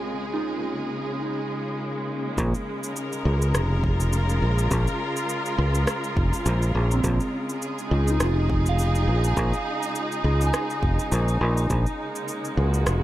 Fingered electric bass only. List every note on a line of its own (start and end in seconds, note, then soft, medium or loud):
0.00 2.35 A#1 medium
2.38 2.52 A#1 loud
3.25 3.51 C#2 medium
3.55 4.39 F1 medium
4.42 4.68 A#1 medium
4.71 4.85 A#1 loud
5.58 5.84 C#2 medium
6.17 6.31 F1 medium
6.46 6.72 A#1 loud
6.75 7.01 A#1 medium
7.04 7.18 A#1 loud
7.91 8.17 C#2 medium
8.20 9.05 F1 medium
9.08 9.34 A#1 medium
9.37 9.51 A#1 loud
10.24 10.50 C#2 medium
10.82 10.97 F1 medium
11.12 11.38 A#1 loud
11.41 11.67 A#1 medium
11.70 11.84 A#1 loud
12.57 12.83 C#2 medium
12.87 13.03 F1 medium